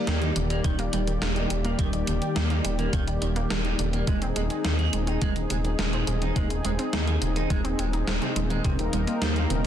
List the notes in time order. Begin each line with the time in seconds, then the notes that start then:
Already playing: D#3 G3 A#3 G4 D5
0.07 D#2 G3 A#3, snare, closed hi-hat
0.22 D#3 D#4, closed hi-hat
0.36 D#1 D3, closed hi-hat
0.50 D#3 A#3, closed hi-hat
0.64 D#1 D#3 G3, kick, closed hi-hat
0.79 A#3, closed hi-hat
0.93 D#1 D#3 G3, closed hi-hat
1.07 D#3, closed hi-hat
1.22 D#1 D3 A#3, snare, closed hi-hat
1.36 D#3 D#4, closed hi-hat
1.50 D#1 G3, closed hi-hat
1.64 A#3, closed hi-hat
1.79 D#1 D#3 G3, kick, closed hi-hat
1.93 D#3, closed hi-hat
2.07 D#1 D3 D#3, closed hi-hat
2.22 D#3, closed hi-hat
2.36 D#2 G3 A#3, snare, closed hi-hat
2.50 A#3 D#4, closed hi-hat
2.65 D#1 G3, closed hi-hat
2.79 D#3 A#3, closed hi-hat
2.93 D#1 D3 D#3, kick, closed hi-hat
3.07 D#3, closed hi-hat
3.22 D#1 D#3 G3, closed hi-hat
3.36 A#3, closed hi-hat
3.50 D#1 G3 A#3, snare, closed hi-hat
3.65 D#3 D#4, closed hi-hat
3.79 D#1 D3, closed hi-hat
3.93 D#3 A#3, closed hi-hat
4.07 D#1 G#3, kick, closed hi-hat
4.22 C4, closed hi-hat
4.36 D#1 G#3, closed hi-hat
4.50 D#3, closed hi-hat
4.64 D#2 C3 D#4, snare, closed hi-hat
4.79 D#3 G#4, closed hi-hat
4.93 D#1 G#3, closed hi-hat
5.07 C4 D#4, closed hi-hat
5.22 D#1 G#3, kick, closed hi-hat
5.36 D#3, closed hi-hat
5.50 D#1 C3 G#3, closed hi-hat
5.64 D#3, closed hi-hat
5.79 D#1 G#3 D#4, snare, closed hi-hat
5.93 C4 G#4, closed hi-hat
6.07 D#1 G#3, closed hi-hat
6.22 D#3 D#4, closed hi-hat
6.36 D#1 C3 G#3, kick, closed hi-hat
6.50 D#3, closed hi-hat
6.65 D#1 G#3, closed hi-hat
6.79 C4, closed hi-hat
6.93 D#2 G#3 D#4, snare, closed hi-hat
7.07 D#3 G#4, closed hi-hat
7.22 D#1 C3, closed hi-hat
7.36 D#3 D#4, closed hi-hat
7.50 D#1 G#3, kick, closed hi-hat
7.64 C4, closed hi-hat
7.79 D#1 G#3 C4, closed hi-hat
7.93 D#4, closed hi-hat
8.07 D#1 G#3 C4, snare, closed hi-hat
8.22 C3 C4, closed hi-hat
8.36 D#1 G#3, closed hi-hat
8.50 D#3 G#3, closed hi-hat
8.64 D#1 C3 G3 A#3 A#4, kick, closed hi-hat
8.79 D#3, closed hi-hat
8.93 D#1 C3 G3, closed hi-hat
9.07 A#3, closed hi-hat
9.21 D#2 G3, snare, closed hi-hat
9.36 D#3 C4, closed hi-hat
9.50 D#1 C3, closed hi-hat